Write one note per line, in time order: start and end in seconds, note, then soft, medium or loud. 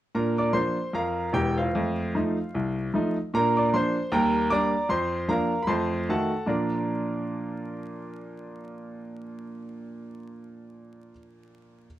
0.15 0.49 A#2 medium
0.15 0.38 D4 soft
0.15 0.38 A#4 medium
0.15 0.39 A#5 medium
0.38 0.54 D5 medium
0.38 0.55 D6 medium
0.53 0.75 F3 soft
0.53 0.76 A#3 soft
0.53 0.76 D4 soft
0.53 0.91 C5 medium
0.53 0.94 C6 medium
0.93 1.28 F2 medium
0.93 1.32 A#4 medium
0.93 1.32 F5 medium
0.93 1.34 A#5 medium
1.33 1.65 E1 medium
1.33 1.65 E2 medium
1.33 1.57 G4 medium
1.33 1.58 G5 medium
1.58 3.13 F4 soft
1.58 3.12 C5 soft
1.58 3.16 F5 medium
1.75 2.08 F2 medium
1.75 1.97 A3 soft
2.15 2.36 F3 medium
2.15 2.36 A3 medium
2.15 2.36 D#4 soft
2.54 2.88 C2 medium
2.94 3.15 F3 medium
2.94 3.16 A3 medium
2.94 3.16 D#4 medium
3.34 3.67 A#2 medium
3.34 3.57 D4 medium
3.34 3.56 A#4 medium
3.34 3.57 A#5 loud
3.57 3.72 D5 medium
3.57 3.72 D6 medium
3.74 3.95 F3 soft
3.74 3.95 A#3 soft
3.74 3.96 D4 medium
3.74 4.11 C5 medium
3.74 4.12 C6 medium
4.12 4.45 D#2 medium
4.12 4.35 G3 soft
4.12 4.49 A#4 medium
4.12 4.49 G5 medium
4.12 4.51 A#5 medium
4.50 4.72 G3 medium
4.50 4.73 A#3 medium
4.50 4.73 D4 soft
4.50 4.88 D5 medium
4.50 4.88 A#5 medium
4.50 4.90 D6 medium
4.89 5.23 F2 medium
4.89 5.27 C5 medium
4.89 5.29 C6 loud
5.29 5.51 F3 soft
5.29 5.51 A#3 medium
5.29 5.51 D4 soft
5.29 5.61 A#4 medium
5.29 5.61 F5 medium
5.29 5.63 A#5 medium
5.63 5.69 B5 medium
5.67 6.01 F2 medium
5.67 5.91 A3 soft
5.67 6.06 C5 medium
5.67 6.06 A5 medium
5.67 6.08 C6 medium
6.09 6.31 D#3 soft
6.09 6.30 A3 soft
6.09 6.31 F#4 medium
6.09 6.46 A4 medium
6.09 6.46 F#5 medium
6.09 6.49 A5 medium
6.46 11.10 A#2 medium
6.46 11.10 F3 soft
6.46 11.10 D4 soft
6.46 11.10 F4 soft
6.46 11.11 A#4 soft
6.46 11.11 D5 medium
6.46 11.11 A#5 medium